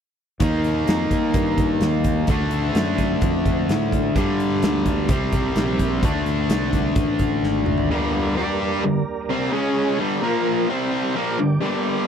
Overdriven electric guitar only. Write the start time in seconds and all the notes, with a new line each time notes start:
0.40 D#3 A#3 D#4
2.28 D3 A3 D4
4.15 G2 D3 G3
5.09 C3 G3 C4
6.03 D3 A3 D4
7.90 G2 D3 G3
8.36 G3 D4 G4
8.84 G2 D3
9.30 C3 G3 C4
9.52 C#3 G#3 C#4
9.99 G2 D3 G3
10.22 A#2 F3 A#3
10.69 C3 G3 C4
11.15 A#2 F3 A#3
11.38 G2 D3
11.61 G2 D3 G3